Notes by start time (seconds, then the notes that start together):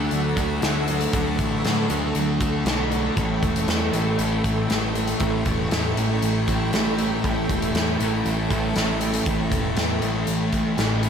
Already playing: D3 F#3 A3 D4 F#4 A4 F#5 C#6 E6
0.11 D2 F#3, closed hi-hat
0.37 D2 A3, kick, closed hi-hat
0.61 D2 D3 A3 D4, snare, closed hi-hat
0.88 F#3, closed hi-hat
1.01 closed hi-hat
1.12 D2 D3 F#3 A3 D4 F#4, kick, closed hi-hat
1.39 A1, kick, closed hi-hat
1.65 A2 F#3, snare, closed hi-hat
1.89 D2 D3 A3 D4, closed hi-hat
2.15 D2 F#3, closed hi-hat
2.41 D2 A3, kick, closed hi-hat
2.65 B1 D3 A3 D4, snare, closed hi-hat
2.91 F#3, closed hi-hat
3.15 A1 A2 E3 G3 A3 C#4 E4 E5 G5, kick, closed hi-hat
3.43 E1, kick, closed hi-hat
3.56 closed hi-hat
3.68 E2 A3, snare, closed hi-hat
3.92 A1 A2 E3 A3 C#4, closed hi-hat
4.18 A1 A3, closed hi-hat
4.44 A1 C#4, kick, closed hi-hat
4.68 A1 A2 E3 A3 G4, snare, closed hi-hat
4.95 A3, closed hi-hat
5.07 closed hi-hat
5.19 A1 A2 E3 G3 A3 C#4 E4, kick, closed hi-hat
5.46 E1, kick, closed hi-hat
5.71 E2 A3, snare, closed hi-hat
5.95 A1 A2 E3 A3 C#4, closed hi-hat
6.22 A1 A3, closed hi-hat
6.48 A1 C#4, kick, closed hi-hat
6.71 A1 A2 E3 A3 G4, snare, closed hi-hat
6.99 A3, closed hi-hat
7.23 A1 A2 E3 G3 A3 C#4 E4, kick, closed hi-hat
7.49 E1, kick, closed hi-hat
7.62 closed hi-hat
7.75 E2 A3, snare, closed hi-hat
7.99 A1 A2 E3 A3 C#4, closed hi-hat
8.25 A1 A3, closed hi-hat
8.50 A1 C#4, kick, closed hi-hat
8.74 A1 A2 E3 A3 G4, snare, closed hi-hat
9.01 A3, closed hi-hat
9.14 closed hi-hat
9.25 A1 A2 E3 G3 A3 C#4 E4, kick, closed hi-hat
9.52 E1, kick, closed hi-hat
9.77 E2 A3, snare, closed hi-hat
10.01 A1 A2 E3 A3 C#4, closed hi-hat
10.27 A1 A3, closed hi-hat
10.53 A1 C#4, kick, closed hi-hat
10.77 A1 A2 E3 A3 G4, snare, closed hi-hat
11.03 A3, closed hi-hat